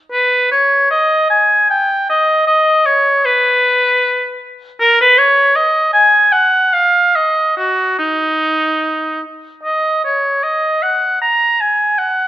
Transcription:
0.12 B4
0.51 C#5
0.91 D#5
1.30 G#5
1.70 G5
2.10 D#5
2.47 D#5
2.86 C#5
3.25 B4
4.80 A#4
5.01 B4
5.18 C#5
5.56 D#5
5.93 G#5
6.32 F#5
6.73 F5
7.16 D#5
7.57 F#4
7.99 D#4
9.64 D#5
10.04 C#5
10.43 D#5
10.83 F#5
11.22 A#5
11.61 G#5
11.98 F#5

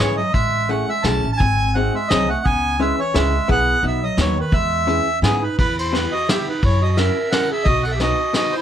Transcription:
Already playing: G#2 E3 C#5
0.00 B3 C#4 E4 G#4
0.17 F#3 D#5
0.32 A1 G#3 E5, kick, closed hi-hat
0.69 A3 C#4 E4 G#4 F#5, closed hi-hat
0.88 G#3 E5
1.03 B1 A3 C#4 E4 G#4 A5, snare, closed hi-hat
1.24 A1
1.32 C#4 A5
1.38 G#1 C4 G#5, kick, closed hi-hat
1.74 C4 D#4 F#4 G#4 F#5, closed hi-hat
1.94 G#3 E5
2.08 C2 F#3 C4 D#4 F#4 G#4 D#5, snare, closed hi-hat
2.29 A3 F#5
2.44 C#2 B3 G#5, kick, closed hi-hat
2.80 G#3 C#4 E4 G#4 B4 E5, closed hi-hat
2.98 E3 C#5
3.14 C#2 G#3 C#4 E4 G#4 B4 E5, snare, closed hi-hat
3.48 B1 B3 E4 G#4 B4 F#5, kick, closed hi-hat
3.83 B1 B3 D#4 F#4 B4, closed hi-hat
3.87 E5
4.03 F#3 D#5
4.17 D#2 F#3 B3 D#4 F#4 B4 C#5, snare, closed hi-hat
4.38 D#3 B4
4.52 E2 G#3 E5, kick, closed hi-hat
4.87 C#4 E4 G#4 B4, closed hi-hat
5.22 G#2 B3 C#4 E4 G#4 B4, snare, closed hi-hat
5.42 D#4 B4
5.58 E2 E4 B4, kick, ride
5.79 E4 C5, ride
5.93 B3 E4 G4 B4, snare, ride
6.12 F#4 D#5
6.29 B3 E4 G4 B4 E5, snare, ride
6.48 D#4 B4
6.62 F#2 E4 C#5, kick, ride
6.82 F#4 D#5
6.97 C#4 E4 F#4 A#4 E5, snare, ride
7.31 C#4 E4 F#4 A#4 F#5, snare, ride
7.51 G#4 E5
7.64 B1 F#4 D#5, kick, ride
7.83 F#5, ride
7.87 A4
7.91 E5
7.96 G4
8.00 B3 D#4 F#4 B4 D#5, snare, ride
8.33 B3 D#4 F#4 B4 D#5, snare, ride
8.52 E4 C5

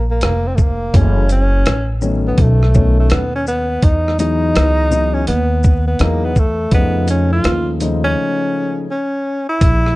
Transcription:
Already playing: A#1
0.11 A#3
0.21 F1 A#3, cross-stick, closed hi-hat
0.47 C4
0.56 A3, kick, shaker
0.61 A#3
0.93 F#1 E3 F#3 G#3 A3 C#4, kick, closed hi-hat
1.29 C#4, closed hi-hat, shaker
1.66 A1, cross-stick, closed hi-hat
2.02 D#3 F#3 A3 B3 C#4, shaker
2.27 B3
2.38 B1 A3, kick, closed hi-hat
2.63 cross-stick
2.74 D#3 F#3 A3 B3 C#4, kick, shaker
3.00 A3
3.10 D#2 B3, cross-stick, closed hi-hat
3.35 C#4
3.47 B3, shaker
3.82 E2 D#4, kick, closed hi-hat
4.08 cross-stick
4.19 E3 F#3 G#3 B3 D#4, closed hi-hat, shaker
4.55 C#2, cross-stick, closed hi-hat
4.90 E3 F#3 G#3 B3 D#4, shaker
5.14 C#4
5.27 D#2 B3, closed hi-hat
5.64 kick, shaker
5.87 B3
5.99 E2 E3 F#3 G#3 A#3 B3 D#4, cross-stick, closed hi-hat
6.25 B3
6.36 A3, kick, shaker
6.71 F2 C#3 F3 G#3 A3 B3 D#4, kick, closed hi-hat
7.08 C#4, closed hi-hat, shaker
7.32 F4
7.44 D#2, cross-stick, closed hi-hat
7.80 C#3 F3 G#3 A3 D#4, closed hi-hat, shaker
8.04 C#4
8.91 C#4
9.49 E4
9.61 A#1, kick, closed hi-hat
9.86 cross-stick

